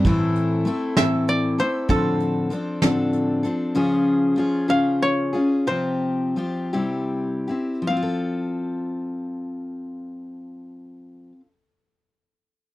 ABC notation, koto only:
X:1
M:6/8
L:1/8
Q:3/8=60
K:F
V:1 name="Koto"
z3 e d c | A4 z2 | z3 f _d2 | c4 z2 |
f6- | f6 |]